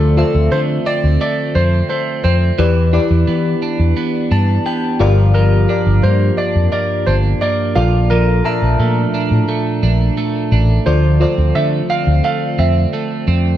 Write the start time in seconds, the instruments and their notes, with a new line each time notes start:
Already playing: fretless electric bass D2, fm electric piano D3 F4 A4 C5 D5, clean electric guitar F3 A3 D4, grand piano A4
0.17 clean electric guitar C4, fm electric piano F4 A4 C5 E5
0.35 fretless electric bass D2
0.52 fretless electric bass D3, clean electric guitar A3, grand piano C5
0.86 clean electric guitar C4, grand piano D5
1.04 fretless electric bass D2
1.21 clean electric guitar A3, grand piano D5
1.55 fretless electric bass F2, clean electric guitar C4, grand piano C5
1.89 clean electric guitar A3, grand piano C5
2.24 fretless electric bass F2, clean electric guitar C4, grand piano C5
2.58 fretless electric bass E2, clean electric guitar E3, fm electric piano E3 E4 G4 B4 D5, grand piano B4
2.93 clean electric guitar D4, fm electric piano E4 G4 B4 D5
3.11 fretless electric bass E2
3.28 fretless electric bass E3, clean electric guitar B3
3.62 clean electric guitar D4
3.79 fretless electric bass E2
3.97 clean electric guitar B3
4.31 fretless electric bass G2, clean electric guitar D4, fm electric piano A5
4.66 clean electric guitar B3, fm electric piano G5
5.00 fretless electric bass G1, fm electric piano G2 F4 G4 A#4 D5 F5, clean electric guitar F3
5.34 clean electric guitar F3, grand piano A#4
5.69 clean electric guitar D4, fm electric piano F4 G4 A#4 D5
5.86 fretless electric bass G1
6.03 fretless electric bass G2, clean electric guitar A#3, grand piano C5
6.37 clean electric guitar D4, grand piano D5
6.56 fretless electric bass F2
6.72 clean electric guitar A#3, grand piano D5
7.06 fretless electric bass G1, clean electric guitar D4, grand piano C5
7.41 clean electric guitar A#3, grand piano D5
7.75 fretless electric bass A#1, fm electric piano A#2 F4 A4 A#4 D5, clean electric guitar F3, grand piano F5
8.10 clean electric guitar F3, grand piano A#4
8.44 clean electric guitar D4, fm electric piano F4 E5 A5 A#5
8.62 fretless electric bass A#1
8.79 fretless electric bass A#2, clean electric guitar A3
9.14 clean electric guitar D4
9.31 fretless electric bass A2
9.49 clean electric guitar A3
9.83 fretless electric bass A#1, clean electric guitar D4
10.17 clean electric guitar A3
10.52 fretless electric bass A1, clean electric guitar D4
10.86 fretless electric bass D2, fm electric piano D3 F4 A4 C5 D5, clean electric guitar F3, grand piano C5
11.20 clean electric guitar C4, fm electric piano F4 A4 C5 D5
11.38 fretless electric bass D2
11.55 fretless electric bass D3, clean electric guitar A3, grand piano E5
11.90 clean electric guitar C4, grand piano F5
12.07 fretless electric bass D2
12.24 clean electric guitar A3, grand piano F5
12.59 fretless electric bass F2, clean electric guitar C4, grand piano E5
12.93 clean electric guitar A3
13.28 fretless electric bass F2, clean electric guitar C4